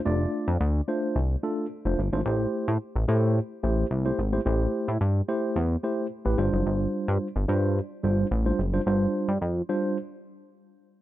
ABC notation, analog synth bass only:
X:1
M:4/4
L:1/16
Q:1/4=109
K:Gdor
V:1 name="Analog synth bass" clef=bass
F,,,2 z F,, D,,2 z2 C,,2 z3 F,,, G,,, ^G,,, | A,,,2 z A,, z A,,, A,,3 z A,,,2 C,,2 ^G,,,2 | A,,,2 z A,, G,,2 z2 E,,2 z3 A,,, G,,, ^F,,, | G,,,2 z G,, z G,,, G,,3 z G,,,2 A,,,2 ^F,,,2 |
G,,,2 z G,, F,,2 z8 z2 |]